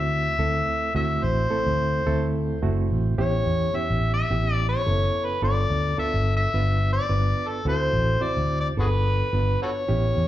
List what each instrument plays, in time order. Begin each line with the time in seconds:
Already playing: fingered electric bass D2, reed electric piano A3 C4 E4 F#4, harmonica E5
0.39 fingered electric bass D2, reed electric piano A3 C4 E4 A4
0.95 fingered electric bass D2, reed electric piano A3 C4 E4 F#4, harmonica E5
1.22 fingered electric bass A1, harmonica C5
1.50 reed electric piano A3 C4 E4 A4
1.67 fingered electric bass D2
2.07 fingered electric bass D2, reed electric piano A3 C4 E4 A4
2.62 fingered electric bass F#1, reed electric piano A3 C4 E4 F#4
2.91 fingered electric bass A1
3.18 fingered electric bass A1, reed electric piano B3 C#4 E4 G4, harmonica C#5
3.46 fingered electric bass E2
3.74 reed electric piano B3 C#4 E4 G4, harmonica E5, muted fingered electric bass stroke
3.90 fingered electric bass A1
4.14 harmonica E5
4.30 fingered electric bass A1, reed electric piano B3 C#4 E4 G4
4.54 harmonica D5
4.69 harmonica C#5
4.86 fingered electric bass F#1, reed electric piano B3 C#4 E4 A4
5.25 harmonica B4
5.42 fingered electric bass G1, reed electric piano B3 D4 F4 A4, harmonica D5
5.70 fingered electric bass D2
5.98 reed electric piano B3 D4 F4 A4, harmonica E5, muted fingered electric bass stroke
6.14 fingered electric bass G1
6.37 harmonica E5
6.54 fingered electric bass G1, reed electric piano B3 D4 F4 B4
6.93 harmonica D5
7.09 fingered electric bass G1, reed electric piano B3 D4 F4 B4
7.48 harmonica A4
7.65 fingered electric bass D2, reed electric piano C4 E4 F#4 A4, harmonica C5
7.93 fingered electric bass A1
8.21 reed electric piano C4 E4 F#4 C5, harmonica D5
8.37 fingered electric bass D2
8.60 harmonica D5
8.77 fingered electric bass G1, reed electric piano B3 D4 F4 A4, harmonica F#4 G#4 B4
9.33 fingered electric bass G1, reed electric piano B3 D4 F4 B4
9.62 harmonica F#4 A4 C#5
9.88 fingered electric bass A1, reed electric piano B3 C#4 E4 G4
10.17 fingered electric bass E2